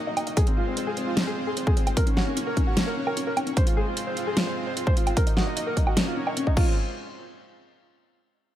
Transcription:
0.00 0.35 A#3 medium
0.00 0.35 D#4 medium
0.00 0.35 F#4 medium
0.00 0.35 D#5 medium
0.07 0.13 D#4 medium
0.17 0.23 D#4 medium
0.17 closed hi-hat medium
0.17 low woodblock medium
0.27 0.33 D#4 medium
0.27 closed hi-hat medium
0.37 1.95 G#3 medium
0.37 1.95 C4 medium
0.37 1.95 F4 medium
0.37 0.43 G#4 medium
0.37 1.95 C5 medium
0.37 kick loud
0.37 closed hi-hat medium
0.47 0.53 C4 medium
0.47 closed hi-hat soft
0.57 0.63 F4 medium
0.67 0.73 C4 medium
0.77 0.83 C4 medium
0.77 closed hi-hat medium
0.87 0.93 G#4 medium
0.97 1.03 C4 medium
0.97 closed hi-hat soft
1.07 1.13 F4 medium
1.17 1.23 C4 medium
1.17 snare loud
1.17 closed hi-hat medium
1.27 1.33 G#4 medium
1.37 1.43 C4 medium
1.47 1.53 G#4 medium
1.57 1.63 C4 medium
1.57 closed hi-hat medium
1.67 1.73 G#4 medium
1.67 kick loud
1.77 1.83 C4 medium
1.77 closed hi-hat soft
1.87 1.93 C4 medium
1.87 closed hi-hat medium
1.87 low woodblock medium
1.97 3.55 A#3 medium
1.97 3.55 C#4 medium
1.97 3.55 F#4 medium
1.97 2.03 A#4 medium
1.97 3.55 C#5 medium
1.97 kick loud
1.97 closed hi-hat medium
2.07 2.13 C#4 medium
2.07 closed hi-hat medium
2.17 2.23 F#4 medium
2.17 snare medium
2.27 2.33 C#4 medium
2.37 2.43 C#4 medium
2.37 closed hi-hat medium
2.47 2.53 A#4 medium
2.57 2.63 C#4 medium
2.57 kick medium
2.57 closed hi-hat soft
2.67 2.73 F#4 medium
2.77 2.83 C#4 medium
2.77 snare loud
2.77 closed hi-hat medium
2.87 2.93 A#4 medium
2.97 3.03 C#4 medium
3.07 3.13 A#4 medium
3.07 low woodblock medium
3.17 3.23 C#4 medium
3.17 closed hi-hat medium
3.27 3.33 A#4 loud
3.37 3.43 C#4 medium
3.37 closed hi-hat soft
3.37 low woodblock medium
3.47 3.53 C#4 medium
3.47 closed hi-hat soft
3.57 5.15 G#3 medium
3.57 5.15 C4 medium
3.57 5.15 F4 medium
3.57 3.63 C5 loud
3.57 5.15 C5 medium
3.57 kick loud
3.57 closed hi-hat medium
3.67 3.73 F4 medium
3.67 closed hi-hat medium
3.77 3.83 G#4 medium
3.87 3.93 F4 medium
3.97 4.03 F4 medium
3.97 closed hi-hat medium
4.07 4.13 C5 medium
4.17 4.23 F4 medium
4.17 closed hi-hat soft
4.27 4.33 G#4 medium
4.37 4.43 F4 medium
4.37 snare loud
4.37 closed hi-hat medium
4.47 4.53 C5 medium
4.57 4.63 F4 medium
4.67 4.73 C5 medium
4.77 4.83 F4 medium
4.77 closed hi-hat medium
4.87 4.93 C5 medium
4.87 kick loud
4.97 5.03 F4 medium
4.97 closed hi-hat soft
5.07 5.13 F4 medium
5.07 closed hi-hat medium
5.07 low woodblock medium
5.17 5.96 A#3 medium
5.17 5.96 D#4 medium
5.17 6.55 F#4 medium
5.17 5.23 A#4 loud
5.17 5.96 D#5 medium
5.17 kick loud
5.17 closed hi-hat medium
5.27 5.33 D#4 medium
5.27 closed hi-hat medium
5.37 5.43 F#4 loud
5.37 snare medium
5.47 5.53 D#4 medium
5.57 5.63 D#4 medium
5.57 closed hi-hat medium
5.67 5.73 A#4 medium
5.77 5.83 D#4 medium
5.77 kick medium
5.77 closed hi-hat medium
5.87 5.93 F#4 medium
5.87 low woodblock medium
5.97 6.56 A#3 medium
5.97 6.03 C#4 medium
5.97 6.56 C#4 medium
5.97 6.56 C#5 medium
5.97 snare loud
5.97 closed hi-hat medium
6.07 6.13 F4 medium
6.17 6.23 C#4 medium
6.27 6.33 D#4 medium
6.27 low woodblock medium
6.37 6.43 C#4 medium
6.37 closed hi-hat medium
6.47 6.53 D#4 loud
6.47 kick medium
6.57 6.75 G#3 medium
6.57 6.75 C4 medium
6.57 6.75 F4 medium
6.57 6.72 F4 medium
6.57 6.75 C5 medium
6.57 kick loud
6.57 crash medium

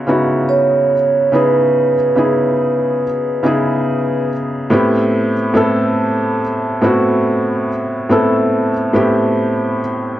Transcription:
0.00 0.07 C#3 medium
0.00 0.08 B3 medium
0.00 0.08 D#4 medium
0.00 0.09 E4 medium
0.00 4.73 F4 medium
0.00 0.10 F#4 medium
0.07 0.93 C#3 medium
0.07 0.93 B3 medium
0.07 0.93 D#4 medium
0.07 0.94 E4 medium
0.07 0.94 F#4 medium
0.49 1.36 C#5 medium
1.32 1.94 C#3 medium
1.32 1.94 B3 medium
1.32 1.94 D#4 medium
1.32 1.95 E4 medium
1.32 1.95 G#4 medium
1.32 4.26 B4 medium
2.15 3.03 C#3 medium
2.15 3.03 B3 medium
2.15 3.03 D#4 medium
2.15 3.04 E4 medium
2.15 3.04 G#4 medium
3.43 4.30 C#3 medium
3.43 4.30 B3 medium
3.43 4.30 D#4 medium
3.43 4.31 E4 medium
3.43 4.31 G#4 medium
4.70 5.32 A2 medium
4.70 5.32 B3 medium
4.70 5.32 C4 medium
4.70 5.33 E4 medium
4.70 5.33 G4 medium
5.54 6.41 A2 medium
5.54 6.41 B3 medium
5.54 6.41 C4 medium
5.54 6.42 E4 medium
5.54 6.42 A4 medium
6.81 7.68 A2 medium
6.81 7.68 B3 medium
6.81 7.69 C4 medium
6.81 7.69 E4 medium
6.81 7.70 F#4 medium
8.09 8.70 A2 medium
8.09 8.71 B3 medium
8.09 8.71 C4 medium
8.09 8.71 E4 medium
8.09 8.72 A4 medium
8.93 9.79 A2 medium
8.93 9.80 B3 medium
8.93 9.80 C4 medium
8.93 9.81 E4 medium
8.93 9.81 G4 medium

